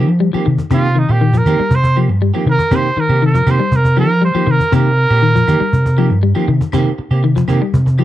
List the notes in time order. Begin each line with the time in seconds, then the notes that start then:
Already playing: F3
0.09 F3, muted clean electric guitar stroke, cajon slap
0.19 G3, cajon slap
0.33 D#3 F3 A#3 C4 G4, muted fingered electric bass stroke, claves
0.46 C3 D#3, muted clean electric guitar stroke
0.58 muted clean electric guitar stroke, cajon bass, cajon slap
0.70 C3 D#3 A#3 C4 F4 G4, cajon bass, claves
0.95 D#3 D#4, muted clean electric guitar stroke, cajon slap
1.08 A#2 A#3 C4 G4, cajon slap, claves
1.20 D#3, muted clean electric guitar stroke, cajon slap
1.33 F3, muted clean electric guitar stroke, cajon bass
1.38 A#4
1.46 D#3 A#3 C4 G4, cajon bass, cajon slap, claves
1.59 G3, muted clean electric guitar stroke, muted fingered electric bass stroke
1.70 C3, cajon bass, cajon slap
1.75 C5
1.83 muted clean electric guitar stroke, cajon bass
1.96 F3 A#3 C4 G4, muted clean electric guitar stroke, claves
2.08 G2, muted clean electric guitar stroke, cajon slap
2.21 G3, cajon slap
2.34 D#3 F3 A#3 C4 G4, claves
2.46 C3 D#3, muted clean electric guitar stroke, cajon slap
2.50 A#4
2.59 muted clean electric guitar stroke, cajon bass
2.71 C3 D#3 A#3 C4 G4, cajon bass, claves
2.75 C5
2.96 D#3 A#4, muted clean electric guitar stroke, muted fingered electric bass stroke, cajon slap
3.09 C3 A#3 C4 G4, claves
3.21 D#3, muted clean electric guitar stroke, cajon slap
3.26 A#4
3.34 F3, muted clean electric guitar stroke, cajon bass, cajon slap
3.47 C3 D#3 A#3 C4 G4, cajon bass, cajon slap, claves
3.51 C5
3.60 G3, muted clean electric guitar stroke
3.72 C3, cajon bass
3.76 A#4
3.84 muted clean electric guitar stroke, cajon bass
3.96 D#3 F3 A#3 C4 G4 A#4, claves
4.09 F3, muted clean electric guitar stroke, cajon slap
4.22 G3 C5, cajon slap
4.34 D#3 F3 A#3 G4, muted fingered electric bass stroke, muted clean electric guitar stroke, claves
4.47 C3 D#3, muted clean electric guitar stroke
4.51 A#4
4.60 muted clean electric guitar stroke, cajon bass
4.72 C3 D#3 A#3 C4 G4 A#4, cajon bass, claves
4.97 muted clean electric guitar stroke, cajon slap
5.10 A#2 A#3 C4 G4, cajon slap, claves
5.22 D#3, muted clean electric guitar stroke
5.35 F3, muted clean electric guitar stroke, cajon bass
5.47 D#3 A#3 G4, cajon bass, claves
5.60 G3, muted clean electric guitar stroke, muted fingered electric bass stroke
5.73 C3, cajon bass
5.86 muted clean electric guitar stroke, cajon bass
5.97 D#3 F3 A#3 C4 G4, claves
6.10 G2, muted clean electric guitar stroke, cajon slap
6.23 G3, cajon slap
6.35 D#3 F3 A#3 C4 G4, claves
6.48 C3 D#3, muted clean electric guitar stroke, cajon slap
6.61 muted clean electric guitar stroke, cajon bass
6.72 C3 D#3 A#3 C4 G4, cajon bass, claves
6.98 muted clean electric guitar stroke, muted fingered electric bass stroke, cajon slap
7.11 C3 A#3 C4 G4, cajon slap, claves
7.23 D#3, muted clean electric guitar stroke, cajon slap
7.36 F3, muted clean electric guitar stroke, cajon bass, cajon slap
7.48 C3 D#3 A#3 C4 G4, cajon bass, claves
7.61 G3, muted clean electric guitar stroke
7.74 C3, cajon bass
7.86 muted clean electric guitar stroke, cajon bass
7.98 D#3 F3 C4 G4, cajon slap, claves